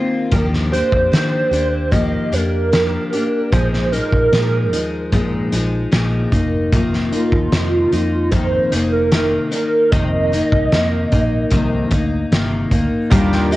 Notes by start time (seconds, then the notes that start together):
Already playing: D#3 A#3 C4 F4
0.31 D#2 D#3 F3 A#3 D4 G4 A#4, kick, closed hi-hat
0.53 snare
0.72 A#3 D4 G4 C5, closed hi-hat
0.92 F2, kick
1.12 D#3 F3 A#3 D4 G4, snare, closed hi-hat
1.51 D#2 A#3 D4 G4, closed hi-hat
1.91 D#3 F3 A#3 G4 D#5, kick, closed hi-hat
2.32 F2 A#3 D4 G4 A#4, closed hi-hat
2.72 F3 A#3 D4 G4, snare, closed hi-hat
3.13 A#3 D4 G4, closed hi-hat
3.52 A#1 A#2 F3 G#3 D#4 C5, kick, closed hi-hat
3.73 snare
3.92 F3 G#3 D#4 A#4, closed hi-hat
4.12 A#1, kick
4.32 A#2 F3 G#3 D#4, snare, closed hi-hat
4.72 D#2 F3 G#3 D#4, closed hi-hat
5.12 F2 A#2 F3 G#3 D#4, kick, closed hi-hat
5.52 A#1 F3 G#3 D#4, closed hi-hat
5.92 A#1 A#2 F3 G#3 D#4, snare, closed hi-hat
6.32 F1 D#3 A#3 D#4, kick, closed hi-hat
6.73 F2 C3 D#3 A#3 D#4 F4, kick, closed hi-hat
6.93 snare
7.12 D#3 A#3 D#4, closed hi-hat
7.32 D#2, kick
7.52 F2 C3 D#3 A#3 D#4, snare, closed hi-hat
7.92 F2 D#3 A#3 D#4, closed hi-hat
8.31 F2 C3 D#3 A#3 D#4 C5, kick, closed hi-hat
8.72 F1 D#3 A#3 D#4, closed hi-hat
8.92 A#4
9.12 C3 D#3 A#3 D#4, snare, closed hi-hat
9.51 D#3 A#3 D#4 A#4, closed hi-hat
9.91 F1 F2 C3 D#3 A#3 D#4 D#5, kick, closed hi-hat
10.32 D#3 A#3 D#4, closed hi-hat
10.52 C2, kick
10.72 F2 C3 D#3 A#3 D#4, snare, closed hi-hat
11.12 A#1 D#3 A#3 D#4, kick, closed hi-hat
11.50 C2 F2 C3 D#3 A#3 D#4, kick, closed hi-hat
11.91 D2 A#3 D#4, kick, closed hi-hat
12.31 G1 C3 D#3 A#3 D#4, snare, closed hi-hat
12.71 D2 D#3 A#3 D#4, kick, closed hi-hat
13.10 D#2 D#3 G3 A#3 D4 F4 G4 A#4, kick, closed hi-hat
13.32 snare
13.51 G4 D#5, closed hi-hat